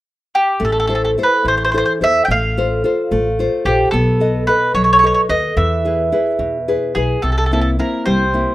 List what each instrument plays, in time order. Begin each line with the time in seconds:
0.35 mandolin G4
0.60 upright bass A1, nylon-string guitar A3
0.65 mandolin A4
0.72 mandolin A4
0.80 mandolin A4
0.87 nylon-string guitar E4 A4 C5, mandolin A4
0.95 mandolin A4
1.05 mandolin A4
1.18 nylon-string guitar E4 A4 C5
1.23 mandolin B4
1.45 upright bass A1, nylon-string guitar E3, mandolin C5
1.57 mandolin C5
1.65 mandolin C5
1.72 nylon-string guitar E4 A4 C5, mandolin C5
1.78 mandolin C5
1.86 mandolin C5
2.01 upright bass E2, nylon-string guitar E4 A4 C5, mandolin E5
2.25 upright bass A1, mandolin G5
2.31 nylon-string guitar A3, mandolin F5
2.57 nylon-string guitar F4 A4 C5
2.84 nylon-string guitar F4 A4 C5
3.11 upright bass A1, nylon-string guitar A3
3.39 nylon-string guitar F4 A4 C5
3.65 upright bass A#1, nylon-string guitar F4 A4 C5, mandolin G4
3.91 upright bass B1, nylon-string guitar B3, mandolin A4
4.20 nylon-string guitar A4 B4 D#5
4.47 nylon-string guitar A4 B4 D#5, mandolin B4
4.74 upright bass B1, nylon-string guitar F#3, mandolin C#5
4.84 mandolin C#5
4.93 mandolin C#5
4.99 mandolin C#5
5.03 nylon-string guitar A4 B4 D#5, mandolin C#5
5.14 mandolin C#5
5.29 upright bass D#2, nylon-string guitar A4 B4 D#5, mandolin D#5
5.57 upright bass E2, nylon-string guitar E3, mandolin E5
5.85 nylon-string guitar E4 G#4 B4
6.12 nylon-string guitar E4 G#4 B4
6.39 upright bass E2, nylon-string guitar B2
6.68 nylon-string guitar E4 G#4 B4
6.95 upright bass B1, nylon-string guitar E4 G#4 B4, mandolin G#4
7.22 upright bass C2, nylon-string guitar C3, mandolin A4
7.32 mandolin A4
7.38 mandolin A4
7.46 mandolin A4
7.51 nylon-string guitar A#3 C4 E4, mandolin A4
7.61 mandolin A4
7.79 nylon-string guitar A#3 C4 E4, mandolin A#4
8.06 upright bass C2, nylon-string guitar G3, mandolin C5
8.34 nylon-string guitar A#3 C4 E4